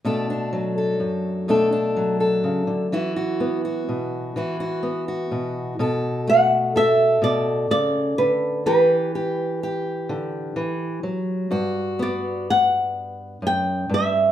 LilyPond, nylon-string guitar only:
\new Staff \with { instrumentName = "Nylon-string guitar" } { \time 6/8 \key b \minor \tempo 4. = 42 r2. | r2. | r8 fis''8 e''8 d''8 d''8 b'8 | b'2~ b'8 r8 |
r8 d''8 fis''4 g''8 e''8 | }